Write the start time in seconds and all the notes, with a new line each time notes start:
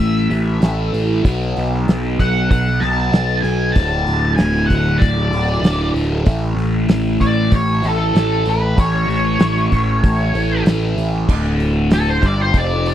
Already playing: A2 E3 A3 E5
0.00 A1
0.30 A1 A2 E3 A3, open hi-hat
0.61 A1 A2 E3 A3, snare, open hi-hat
0.93 A1, open hi-hat
1.23 B1 B2 F#3 B3, kick, open hi-hat
1.57 B1, open hi-hat
1.88 B1, snare, open hi-hat
2.19 B1 F#5, kick, open hi-hat
2.51 B1 F#5, kick, open hi-hat
2.68 snare
2.80 B1 B2 F#3 B3 A5, open hi-hat
3.12 B1 B2 F#3 B3, snare, open hi-hat
3.41 B1 G#5, open hi-hat
3.72 D2 A5, kick, open hi-hat
3.76 D1 A2 D3
4.07 D1, open hi-hat
4.35 D1 G#5, snare, open hi-hat
4.56 snare
4.66 F#5
4.70 D1, kick, open hi-hat
4.98 D1 D5, open hi-hat
5.02 kick
5.31 D1 A2 D3, open hi-hat
5.35 D2
5.61 D1 D2 A2, open hi-hat
5.65 D3, snare
5.94 D1, open hi-hat
6.24 A1 A2 E3 A3, kick, open hi-hat
6.56 A1, open hi-hat
6.88 A1, snare, open hi-hat
7.20 A1 D5, kick, open hi-hat
7.52 A1 C#5, kick, open hi-hat
7.82 A1 A2 E3 A3 A4, open hi-hat
8.14 A1 A2 E3 A3, snare, open hi-hat
8.46 A1 B4, open hi-hat
8.76 A1 A2 E3 A3 C#5, kick, open hi-hat
9.08 A1, open hi-hat
9.40 A1, snare, open hi-hat
9.57 snare
9.72 A1, kick, open hi-hat
10.03 A1, kick, open hi-hat
10.34 A1 A2 E3 A3, open hi-hat
10.65 A1 A2 E3 A3, snare, open hi-hat
10.97 A1, open hi-hat
11.28 D1 D2 D3, kick, crash
11.60 open hi-hat
11.91 A4, snare, open hi-hat
12.09 C5
12.21 G1 G2 G3, kick, open hi-hat
12.26 D5
12.42 C5
12.53 F1 F2 F3, kick, open hi-hat
12.58 D5
12.86 D5, open hi-hat